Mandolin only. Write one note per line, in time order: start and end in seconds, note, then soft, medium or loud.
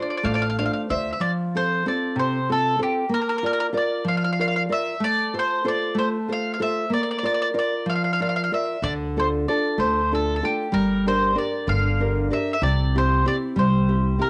0.02 0.09 D5 soft
0.10 0.16 D5 soft
0.17 0.25 D5 medium
0.25 0.34 D5 soft
0.25 0.33 F5 medium
0.34 0.44 D5 medium
0.34 0.41 F5 medium
0.42 0.48 F5 medium
0.50 0.58 F5 medium
0.59 0.64 F5 medium
0.66 0.72 F5 medium
0.73 0.80 F5 medium
0.90 1.11 E5 medium
1.13 1.20 E5 soft
1.21 1.30 D5 medium
1.57 1.85 C5 medium
1.88 2.16 D5 medium
2.19 2.50 C5 medium
2.52 2.80 A4 medium
2.83 3.10 G4 medium
3.14 3.20 A#4 medium
3.22 3.28 A#4 medium
3.29 3.36 A#4 medium
3.38 3.44 A#4 medium
3.46 3.52 A#4 medium
3.53 3.59 A#4 medium
3.60 3.66 A#4 medium
3.77 4.05 D5 medium
4.08 4.15 F5 medium
4.17 4.23 F5 medium
4.24 4.32 F5 medium
4.33 4.40 F5 medium
4.41 4.46 F5 medium
4.48 4.54 F5 medium
4.56 4.62 F5 medium
4.72 5.02 E5 medium
5.04 5.34 D5 loud
5.39 5.65 C5 medium
5.68 5.98 D5 medium
5.98 6.07 C5 medium
6.33 6.52 F5 medium
6.54 6.60 F5 medium
6.62 6.90 E5 medium
6.94 7.01 D5 medium
7.03 7.09 D5 medium
7.11 7.17 D5 medium
7.18 7.24 D5 medium
7.26 7.32 D5 medium
7.34 7.40 D5 medium
7.42 7.48 D5 medium
7.59 7.86 D5 medium
7.90 7.94 F5 medium
7.96 8.03 F5 soft
8.04 8.11 F5 medium
8.13 8.20 F5 medium
8.22 8.28 F5 medium
8.29 8.35 F5 medium
8.36 8.42 F5 medium
8.44 8.51 F5 medium
8.54 8.85 E5 medium
8.84 8.93 D5 medium
9.20 9.28 C5 medium
9.48 9.77 D5 medium
9.80 10.11 C5 medium
10.15 10.35 A4 medium
10.36 10.43 A4 medium
10.45 10.72 G4 medium
10.74 11.05 A#4 medium
11.08 11.36 C5 medium
11.38 11.69 D5 medium
11.69 12.28 F5 medium
12.33 12.52 E5 medium
12.53 12.61 E5 medium
12.63 12.97 D5 medium
12.98 13.27 C5 medium
13.28 13.36 D5 medium
13.59 14.17 C5 medium
14.22 14.30 A#4 medium